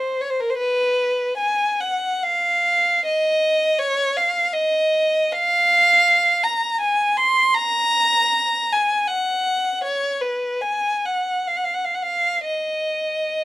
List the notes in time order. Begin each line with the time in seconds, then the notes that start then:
Already playing: C5
0.21 C#5
0.30 C5
0.40 A#4
0.50 C5
0.57 B4
1.38 G#5
1.80 F#5
2.23 F5
3.06 D#5
3.79 C#5
4.17 F5
4.53 D#5
5.33 F5
6.44 A#5
6.81 G#5
7.17 C6
7.55 A#5
8.73 G#5
9.07 F#5
9.84 C#5
10.22 B4
10.61 G#5
11.05 F#5
11.48 F5
11.57 F#5
11.64 F5
11.74 F#5
11.85 F5
11.95 F#5
12.02 F5
12.47 D#5